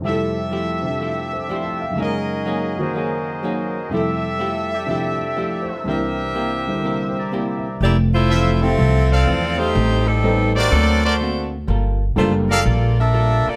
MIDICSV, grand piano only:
0, 0, Header, 1, 2, 480
1, 0, Start_track
1, 0, Key_signature, -1, "major"
1, 0, Tempo, 485437
1, 41, Time_signature, 4, 2, 24, 8
1, 13410, End_track
2, 0, Start_track
2, 0, Title_t, "Grand piano"
2, 0, Program_c, 0, 0
2, 0, Note_on_c, 0, 41, 46
2, 19, Note_on_c, 0, 48, 38
2, 44, Note_on_c, 0, 55, 43
2, 74, Note_on_c, 0, 64, 39
2, 97, Note_on_c, 0, 69, 47
2, 800, Note_off_c, 0, 48, 0
2, 815, Note_on_c, 0, 48, 36
2, 826, Note_on_c, 0, 53, 32
2, 836, Note_on_c, 0, 62, 32
2, 847, Note_on_c, 0, 67, 41
2, 1316, Note_on_c, 0, 72, 38
2, 1467, Note_on_c, 0, 74, 34
2, 1569, Note_off_c, 0, 72, 0
2, 1628, Note_on_c, 0, 76, 39
2, 1778, Note_off_c, 0, 74, 0
2, 1783, Note_on_c, 0, 77, 43
2, 1880, Note_on_c, 0, 42, 40
2, 1884, Note_off_c, 0, 76, 0
2, 1906, Note_on_c, 0, 49, 44
2, 1936, Note_off_c, 0, 41, 0
2, 1936, Note_on_c, 0, 56, 39
2, 1948, Note_off_c, 0, 48, 0
2, 1953, Note_off_c, 0, 53, 0
2, 1958, Note_off_c, 0, 62, 0
2, 1963, Note_off_c, 0, 55, 0
2, 1964, Note_off_c, 0, 67, 0
2, 1966, Note_on_c, 0, 63, 43
2, 1978, Note_off_c, 0, 64, 0
2, 1989, Note_off_c, 0, 69, 0
2, 1991, Note_on_c, 0, 70, 49
2, 2042, Note_off_c, 0, 77, 0
2, 2738, Note_on_c, 0, 51, 36
2, 2752, Note_on_c, 0, 58, 34
2, 2759, Note_on_c, 0, 66, 33
2, 2772, Note_on_c, 0, 72, 39
2, 3841, Note_off_c, 0, 42, 0
2, 3849, Note_on_c, 0, 41, 39
2, 3854, Note_off_c, 0, 49, 0
2, 3866, Note_on_c, 0, 48, 38
2, 3868, Note_off_c, 0, 56, 0
2, 3869, Note_off_c, 0, 51, 0
2, 3877, Note_off_c, 0, 58, 0
2, 3878, Note_on_c, 0, 55, 38
2, 3880, Note_off_c, 0, 66, 0
2, 3883, Note_off_c, 0, 63, 0
2, 3887, Note_off_c, 0, 72, 0
2, 3888, Note_on_c, 0, 64, 38
2, 3896, Note_off_c, 0, 70, 0
2, 3901, Note_on_c, 0, 69, 48
2, 4796, Note_off_c, 0, 48, 0
2, 4811, Note_on_c, 0, 48, 37
2, 4817, Note_on_c, 0, 53, 35
2, 4833, Note_on_c, 0, 62, 32
2, 4841, Note_on_c, 0, 67, 40
2, 5079, Note_on_c, 0, 76, 40
2, 5309, Note_on_c, 0, 74, 38
2, 5415, Note_off_c, 0, 76, 0
2, 5561, Note_on_c, 0, 72, 44
2, 5690, Note_off_c, 0, 74, 0
2, 5768, Note_off_c, 0, 48, 0
2, 5775, Note_on_c, 0, 36, 43
2, 5783, Note_on_c, 0, 48, 37
2, 5785, Note_off_c, 0, 41, 0
2, 5789, Note_off_c, 0, 53, 0
2, 5793, Note_off_c, 0, 62, 0
2, 5800, Note_off_c, 0, 55, 0
2, 5800, Note_on_c, 0, 52, 43
2, 5801, Note_off_c, 0, 67, 0
2, 5805, Note_off_c, 0, 64, 0
2, 5808, Note_on_c, 0, 62, 44
2, 5811, Note_off_c, 0, 69, 0
2, 5823, Note_on_c, 0, 70, 48
2, 5896, Note_off_c, 0, 72, 0
2, 6598, Note_on_c, 0, 50, 37
2, 6605, Note_on_c, 0, 55, 33
2, 6615, Note_on_c, 0, 64, 33
2, 6626, Note_on_c, 0, 72, 39
2, 7002, Note_off_c, 0, 72, 0
2, 7017, Note_on_c, 0, 72, 36
2, 7251, Note_on_c, 0, 74, 34
2, 7344, Note_off_c, 0, 72, 0
2, 7487, Note_on_c, 0, 76, 44
2, 7622, Note_off_c, 0, 74, 0
2, 7708, Note_off_c, 0, 36, 0
2, 7712, Note_off_c, 0, 48, 0
2, 7715, Note_off_c, 0, 50, 0
2, 7719, Note_off_c, 0, 55, 0
2, 7720, Note_off_c, 0, 52, 0
2, 7724, Note_off_c, 0, 62, 0
2, 7724, Note_off_c, 0, 64, 0
2, 7732, Note_off_c, 0, 70, 0
2, 7819, Note_off_c, 0, 76, 0
2, 8524, Note_on_c, 0, 53, 53
2, 8526, Note_on_c, 0, 57, 55
2, 8530, Note_on_c, 0, 60, 56
2, 8535, Note_on_c, 0, 64, 52
2, 8536, Note_on_c, 0, 67, 59
2, 8663, Note_off_c, 0, 53, 0
2, 8664, Note_off_c, 0, 57, 0
2, 8666, Note_off_c, 0, 60, 0
2, 8669, Note_off_c, 0, 64, 0
2, 8669, Note_off_c, 0, 67, 0
2, 10120, Note_on_c, 0, 55, 55
2, 10123, Note_on_c, 0, 59, 50
2, 10124, Note_on_c, 0, 60, 53
2, 10127, Note_on_c, 0, 63, 49
2, 10129, Note_on_c, 0, 69, 60
2, 10415, Note_off_c, 0, 55, 0
2, 10416, Note_off_c, 0, 59, 0
2, 10417, Note_off_c, 0, 60, 0
2, 10418, Note_off_c, 0, 63, 0
2, 10419, Note_off_c, 0, 69, 0
2, 12022, Note_on_c, 0, 58, 57
2, 12023, Note_on_c, 0, 55, 67
2, 12030, Note_on_c, 0, 62, 55
2, 12034, Note_on_c, 0, 65, 55
2, 12037, Note_on_c, 0, 69, 64
2, 12325, Note_off_c, 0, 58, 0
2, 12326, Note_off_c, 0, 55, 0
2, 12329, Note_off_c, 0, 62, 0
2, 12331, Note_off_c, 0, 65, 0
2, 12333, Note_off_c, 0, 69, 0
2, 13410, End_track
0, 0, End_of_file